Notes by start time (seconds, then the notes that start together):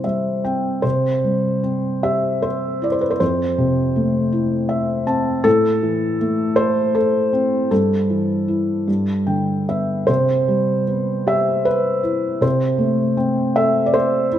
Already playing: C3 G3 C4 E4 C5
0.04 G3 E5
0.44 C4 G5
0.82 C3 C5
1.24 G3
1.63 C4
2.03 G4 E5
2.42 C5
2.82 E4 D5
2.92 C5
3.01 B4
3.10 C5
3.20 F2 C5
3.58 C3
3.96 A3
4.32 E4
4.69 E5
5.07 C4 A5
5.44 A2 A4
5.83 E3
6.21 A3
6.56 E4 C5
6.95 A4
7.33 C4
7.71 G2 A4
8.10 E3
8.48 E4
8.88 G2
9.27 D3 G5
9.69 B3 E5
10.07 C3 C5
10.48 G3
10.88 B3
11.27 G4 E5
11.65 B4
12.03 E4
12.41 C3 C5
12.78 A3
13.17 C4
13.56 A4 E5
13.86 D5
13.94 C5
14.33 E4